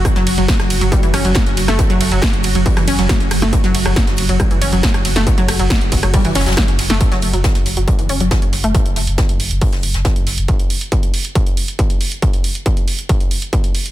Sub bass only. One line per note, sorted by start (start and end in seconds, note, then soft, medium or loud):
0.16 0.26 F#1 medium
0.27 0.37 F#1 loud
0.38 0.48 F#1 medium
0.60 0.70 F#1 medium
0.70 0.81 F#1 loud
0.81 0.92 F#1 medium
1.03 1.13 F#1 medium
1.14 1.24 F#1 loud
1.25 1.35 F#1 medium
1.47 1.57 F#1 medium
1.57 1.68 F#1 loud
1.68 1.79 F#1 medium
1.90 2.00 F#1 medium
2.01 2.11 F#1 loud
2.12 2.22 F#1 medium
2.33 2.44 F#1 medium
2.44 2.55 F#1 loud
2.55 2.66 F#1 medium
2.77 2.87 F#1 medium
2.88 2.98 F#1 loud
2.99 3.09 F#1 medium
3.20 3.31 F#1 medium
3.31 3.42 F#1 loud
3.42 3.53 F#1 medium
3.64 3.74 F#1 medium
3.75 3.85 F#1 loud
3.86 3.96 F#1 medium
4.07 4.17 F#1 medium
4.18 4.29 F#1 loud
4.29 4.40 F#1 medium
4.51 4.61 F#1 medium
4.62 4.72 F#1 loud
4.73 4.83 F#1 medium
4.94 5.04 F#1 medium
5.05 5.15 F#1 loud
5.16 5.26 F#1 medium
5.38 5.48 F#1 medium
5.48 5.59 F#1 loud
5.60 5.70 F#1 medium
5.81 5.91 F#1 medium
5.92 6.02 F#1 loud
6.03 6.13 F#1 medium
6.25 6.35 F#1 medium
6.35 6.46 F#1 loud
6.46 6.57 F#1 medium
6.68 6.78 F#1 medium
6.79 6.89 F#1 loud
6.90 7.00 F#1 medium
7.12 7.22 F#1 medium
7.22 7.33 F#1 loud
7.33 7.44 F#1 medium
7.55 7.65 F#1 medium
7.66 7.76 F#1 loud
7.77 7.87 F#1 medium
7.99 8.09 F#1 medium
8.09 8.20 F#1 loud
8.20 8.31 F#1 medium
8.42 8.52 F#1 medium
8.53 8.63 F#1 loud
8.64 8.74 F#1 medium
8.86 8.96 F#1 medium
8.96 9.07 F#1 loud
9.07 9.18 F#1 medium
9.29 9.39 F#1 medium
9.40 9.50 F#1 loud
9.51 9.61 F#1 medium
9.73 9.83 F#1 medium
9.83 9.94 F#1 loud
9.94 10.05 F#1 medium
10.16 10.26 F#1 medium
10.27 10.37 F#1 loud
10.38 10.48 F#1 medium